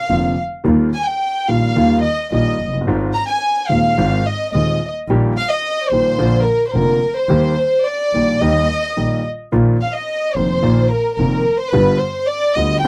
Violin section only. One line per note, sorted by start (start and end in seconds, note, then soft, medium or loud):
0.00 0.39 F5 medium
0.94 1.07 G#5 medium
1.05 1.48 G5 medium
1.48 2.04 F5 medium
2.03 2.29 D#5 medium
2.33 2.71 D#5 medium
3.14 3.27 A#5 medium
3.27 3.67 G#5 medium
3.70 4.25 F5 medium
4.26 4.51 D#5 medium
4.53 4.91 D#5 medium
5.37 5.49 F5 loud
5.50 5.91 D#5 medium
5.89 6.46 C5 medium
6.44 6.66 A#4 medium
6.67 6.74 C5 medium
6.73 7.15 A#4 medium
7.16 7.85 C5 medium
7.85 8.41 D5 medium
8.41 9.25 D#5 medium
9.81 9.94 F5 medium
9.95 10.36 D#5 medium
10.35 10.91 C5 medium
10.89 11.14 A#4 medium
11.15 11.55 A#4 medium
11.58 11.73 C5 medium
11.70 12.00 B4 loud
11.99 12.28 C5 medium
12.27 12.55 D5 medium
12.54 12.83 D#5 medium
12.81 12.88 G5 loud